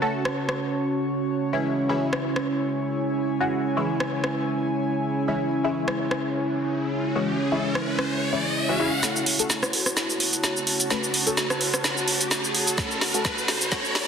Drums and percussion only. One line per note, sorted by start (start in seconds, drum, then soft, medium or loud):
0.25 cross-stick medium
0.49 cross-stick medium
2.13 cross-stick medium
2.36 cross-stick medium
4.00 cross-stick medium
4.24 cross-stick medium
5.88 cross-stick medium
6.11 cross-stick medium
7.75 cross-stick medium
7.99 cross-stick medium
9.03 snare soft
9.03 closed hi-hat medium
9.03 shaker medium
9.16 shaker soft
9.26 open hi-hat loud
9.39 closed hi-hat medium
9.39 shaker medium
9.50 snare soft
9.50 closed hi-hat medium
9.50 shaker medium
9.63 cross-stick medium
9.63 shaker soft
9.73 open hi-hat loud
9.86 cross-stick medium
9.86 shaker medium
9.97 snare medium
9.97 closed hi-hat medium
9.97 shaker medium
10.10 shaker soft
10.20 open hi-hat loud
10.33 closed hi-hat medium
10.33 shaker medium
10.44 snare medium
10.44 closed hi-hat medium
10.44 shaker medium
10.57 shaker soft
10.67 open hi-hat loud
10.80 closed hi-hat medium
10.80 shaker medium
10.90 snare medium
10.90 closed hi-hat medium
10.90 shaker medium
11.04 shaker soft
11.14 open hi-hat loud
11.27 closed hi-hat medium
11.27 shaker medium
11.37 snare medium
11.37 closed hi-hat medium
11.37 shaker medium
11.50 cross-stick medium
11.50 shaker soft
11.61 open hi-hat loud
11.74 cross-stick medium
11.74 closed hi-hat medium
11.74 shaker medium
11.84 snare medium
11.84 closed hi-hat medium
11.84 shaker medium
11.97 shaker soft
12.08 open hi-hat loud
12.21 closed hi-hat medium
12.21 shaker medium
12.31 snare medium
12.31 closed hi-hat medium
12.31 shaker medium
12.44 shaker soft
12.54 open hi-hat loud
12.67 closed hi-hat medium
12.67 shaker medium
12.78 kick loud
12.78 snare medium
12.78 closed hi-hat medium
12.78 shaker medium
12.91 shaker soft
13.01 snare medium
13.01 open hi-hat loud
13.14 closed hi-hat medium
13.14 shaker medium
13.25 kick loud
13.25 snare medium
13.25 closed hi-hat soft
13.25 shaker medium
13.38 shaker soft
13.48 snare medium
13.48 open hi-hat loud
13.61 closed hi-hat medium
13.61 shaker medium
13.72 kick loud
13.72 snare medium
13.72 closed hi-hat medium
13.72 shaker medium
13.85 shaker soft
13.95 snare medium
13.95 open hi-hat loud